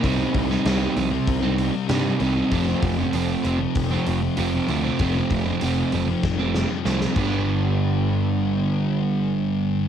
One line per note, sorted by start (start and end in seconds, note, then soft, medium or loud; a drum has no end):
0.03 0.24 C2 medium
0.03 0.65 C3 medium
0.03 0.51 G3 medium
0.03 0.51 C4 medium
0.03 0.49 D#4 medium
0.03 kick loud
0.03 open hi-hat medium
0.18 0.34 G3 soft
0.18 0.36 C4 medium
0.33 0.55 C2 medium
0.33 0.62 C3 medium
0.33 0.64 G3 medium
0.33 0.67 C4 medium
0.33 kick medium
0.33 open hi-hat medium
0.50 0.66 G3 medium
0.50 0.67 C4 medium
0.50 0.67 D#4 medium
0.50 snare soft
0.65 0.86 C2 medium
0.65 0.95 C3 medium
0.65 0.96 G3 medium
0.65 0.98 C4 medium
0.65 0.98 D#4 medium
0.65 snare loud
0.65 open hi-hat medium
0.96 1.17 C2 medium
0.96 1.43 C3 medium
0.96 1.12 G3 medium
0.96 1.12 C4 medium
0.96 1.11 D#4 medium
0.96 muted distorted electric guitar stroke soft
0.96 open hi-hat medium
1.11 1.43 G3 medium
1.11 1.41 C4 medium
1.11 muted overdriven electric guitar stroke soft
1.27 1.69 C2 medium
1.27 kick loud
1.27 open hi-hat medium
1.42 1.74 G3 medium
1.42 1.74 C4 medium
1.42 1.73 D#4 medium
1.57 1.87 C3 medium
1.57 1.89 G3 medium
1.57 1.91 C4 medium
1.57 open hi-hat soft
1.74 muted overdriven electric guitar stroke soft
1.89 2.10 G2 medium
1.89 2.20 C3 medium
1.89 2.20 G3 medium
1.89 2.22 C4 medium
1.89 2.22 D#4 medium
1.89 snare loud
1.89 open hi-hat medium
2.03 2.20 G3 medium
2.03 2.22 C4 medium
2.20 2.41 C2 medium
2.20 2.50 C3 medium
2.20 2.37 G3 medium
2.20 2.37 C4 medium
2.20 2.35 D#4 medium
2.20 open hi-hat soft
2.36 2.51 G3 soft
2.36 2.53 C4 soft
2.36 2.50 D#4 medium
2.51 2.72 F1 medium
2.51 3.13 F2 medium
2.51 3.13 C3 medium
2.51 2.99 F3 medium
2.51 2.98 A3 medium
2.51 2.97 C4 medium
2.51 kick loud
2.51 open hi-hat medium
2.65 2.81 C3 medium
2.65 2.83 F3 medium
2.81 3.03 F1 medium
2.81 3.11 F2 medium
2.81 3.13 C3 medium
2.81 3.15 F3 medium
2.81 kick medium
2.81 open hi-hat medium
2.98 3.14 F3 medium
2.98 3.15 A3 medium
2.98 3.15 C4 medium
3.13 3.34 F1 medium
3.13 4.37 F2 medium
3.13 3.43 C3 medium
3.13 3.45 F3 medium
3.13 3.46 A3 medium
3.13 3.46 C4 medium
3.13 open hi-hat medium
3.44 3.65 F1 medium
3.44 3.60 C3 medium
3.44 3.60 F3 medium
3.44 3.59 A3 medium
3.44 3.59 C4 medium
3.44 muted distorted electric guitar stroke soft
3.44 open hi-hat medium
3.59 3.92 C3 medium
3.59 3.88 F3 medium
3.59 muted overdriven electric guitar stroke medium
3.75 3.96 F1 medium
3.75 kick medium
3.75 open hi-hat medium
3.91 4.06 C3 soft
3.91 4.21 F3 medium
3.91 4.21 A3 medium
3.91 4.21 C4 medium
4.05 4.28 F1 medium
4.05 4.36 F2 medium
4.05 4.38 C3 medium
4.05 4.39 F3 medium
4.05 open hi-hat medium
4.22 muted overdriven electric guitar stroke soft
4.37 4.59 F1 medium
4.37 4.99 F2 medium
4.37 4.67 C3 medium
4.37 4.68 F3 medium
4.37 4.69 A3 medium
4.37 4.69 C4 medium
4.37 open hi-hat medium
4.52 4.68 C3 medium
4.52 4.70 F3 medium
4.68 4.89 D2 medium
4.68 4.97 F2 medium
4.68 4.99 C3 medium
4.68 4.85 F3 medium
4.68 4.84 A3 medium
4.68 4.83 C4 medium
4.68 open hi-hat soft
4.84 5.00 C3 medium
4.84 5.00 F3 medium
4.84 5.00 A3 medium
4.84 5.01 C4 medium
4.99 5.20 F1 medium
4.99 5.61 F2 medium
4.99 5.61 C3 medium
4.99 5.47 F3 medium
4.99 5.46 A3 medium
4.99 5.44 C4 medium
4.99 kick medium
4.99 open hi-hat medium
5.15 5.31 C3 medium
5.15 5.33 F3 medium
5.30 5.51 F1 medium
5.30 5.60 F2 medium
5.30 5.62 C3 medium
5.30 5.63 F3 medium
5.30 kick medium
5.30 open hi-hat medium
5.46 5.62 F3 soft
5.46 5.63 A3 medium
5.46 5.63 C4 medium
5.61 5.82 F1 medium
5.61 6.23 F2 medium
5.61 5.91 C3 medium
5.61 5.92 F3 medium
5.61 5.93 A3 medium
5.61 5.94 C4 medium
5.61 open hi-hat medium
5.92 6.13 F1 medium
5.92 6.09 C3 medium
5.92 6.08 F3 medium
5.92 6.08 A3 medium
5.92 6.08 C4 medium
5.92 muted distorted electric guitar stroke soft
5.92 open hi-hat soft
6.07 6.40 C3 soft
6.07 6.37 F3 medium
6.07 muted overdriven electric guitar stroke soft
6.23 6.64 F1 medium
6.23 kick medium
6.23 snare medium
6.39 6.54 C3 soft
6.39 6.70 F3 soft
6.39 6.70 A3 medium
6.39 6.69 C4 medium
6.53 6.83 F2 medium
6.53 6.85 C3 medium
6.53 6.86 F3 medium
6.53 snare medium
6.71 muted overdriven electric guitar stroke soft
6.85 7.06 C2 medium
6.85 7.15 F2 medium
6.85 7.16 C3 medium
6.85 7.17 F3 medium
6.85 7.17 A3 medium
6.85 7.17 C4 medium
6.85 snare medium
7.01 7.17 C3 soft
7.01 7.16 F3 medium
7.01 snare medium
7.15 9.88 G1 medium
7.15 9.88 G2 medium
7.15 9.88 D3 medium
7.15 9.88 G3 medium
7.15 9.88 B3 medium
7.15 kick medium
7.15 crash medium
7.19 9.88 D4 medium